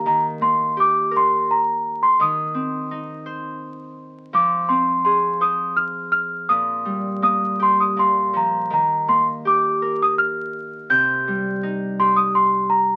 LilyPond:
<<
  \new Staff \with { instrumentName = "Celesta" } { \time 3/4 \key ees \major \tempo 4 = 84 bes''8 c'''8 d'''8 c'''8 bes''8. c'''16 | ees'''2~ ees'''8 r8 | d'''8 c'''8 c'''8 ees'''8 f'''8 f'''8 | ees'''4 ees'''8 c'''16 ees'''16 c'''8 bes''8 |
bes''8 c'''8 d'''8. ees'''16 f'''4 | g'''4. c'''16 ees'''16 c'''8 bes''8 | }
  \new Staff \with { instrumentName = "Harp" } { \time 3/4 \key ees \major ees8 bes8 g'8 bes'4. | ees8 c'8 ees'8 c''4. | f8 c'8 aes'8 c''4. | bes,8 g8 bes8 g'8 bes,8 f8 |
ees8 bes8 g'8 bes'4. | c8 g8 ees'8 g'4. | }
>>